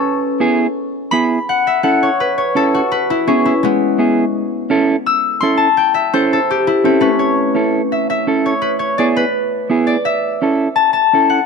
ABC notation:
X:1
M:4/4
L:1/8
Q:1/4=168
K:A
V:1 name="Harp"
z6 b2 | f e f c B c A F | B E C E [G,B,]2 z2 | z4 e'2 =c' a |
=g e =c A =G E =C [A,^CB] | c4 e e2 c | B c d B4 d | e4 a a2 f |]
V:2 name="Clean electric guitar"
z2 [B,EG] z3 [B,EG] z | z2 [CEA] z3 [CEA] z | z2 [B,EG] z3 [B,EG] z | z2 [CEA] z3 [CEA] z |
z2 [CEA] z3 [CEA] z | z2 [CEA] z3 [CEA] z | z2 [B,EG] z3 [B,EG] z | z2 [CEA] z3 [CEA] z |]